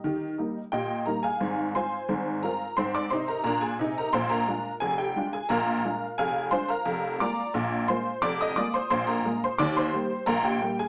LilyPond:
<<
  \new Staff \with { instrumentName = "Honky-tonk piano" } { \time 2/4 \key f \dorian \tempo 4 = 88 <bes' ees''>4 <g' ees'' g''>8 <bes' bes''>16 <aes' f'' aes''>16~ | <aes' f'' aes''>8 <c'' aes'' c'''>4 <bes' bes''>8 | <c'' c'''>16 <d'' d'''>16 <c'' c'''>16 <bes' bes''>16 <bes' bes''>16 <aes' aes''>8 <bes' bes''>16 | <c'' c'''>16 <bes' bes''>8. <aes' aes''>16 <g' g''>8 <aes' aes''>16 |
<bes' f'' bes''>4 <aes' f'' aes''>8 <c'' c'''>16 <bes' f'' bes''>16~ | <bes' f'' bes''>8 <d'' bes'' d'''>4 <c'' c'''>8 | <d'' d'''>16 <ees'' ees'''>16 <d'' d'''>16 <c'' c'''>16 <c'' c'''>16 <bes' bes''>8 <c'' c'''>16 | <d'' d'''>16 <c'' c'''>8. <bes' bes''>16 <g' g''>8 <aes' aes''>16 | }
  \new Staff \with { instrumentName = "Honky-tonk piano" } { \clef bass \time 2/4 \key f \dorian <ees g'>8 <g bes ees'>8 bes,8 <g bes ees'>8 | <aes,, aes,>8 <aes c' f'>8 <aes,, aes,>8 <aes c' f'>8 | <aes, c'>8 <c ees'>8 <bes, d'>8 <c ees'>8 | <bes,, bes,>8 <aes d' f'>8 <f,, f,>8 <aes d' f'>8 |
<bes,, bes,>8 <aes d' f'>8 <f,, f,>8 <aes d' f'>8 | <f,, f,>8 <aes bes f'>8 <bes,, bes,>8 <aes bes f'>8 | <f,, f,>8 <aes bes f'>8 <bes,, bes,>8 <aes bes f'>8 | <ees, ees>8 <g bes g'>8 <bes,, bes,>8 <g bes g'>8 | }
>>